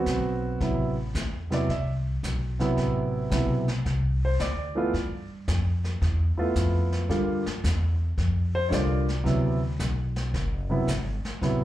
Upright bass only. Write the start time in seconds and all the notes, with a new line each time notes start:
0.06 B1
0.61 A1
1.15 E2
1.69 C2
2.23 B1
2.78 A1
3.31 B1
3.85 C2
4.40 D2
4.94 G2
5.48 F2
6.01 E2
6.37 muted upright bass stroke
6.56 F2
7.09 G2
7.47 muted upright bass stroke
7.64 E2
8.18 F2
8.72 C2
9.26 D2
9.79 B1
10.34 F#1
10.87 G1
11.24 muted upright bass stroke
11.41 A1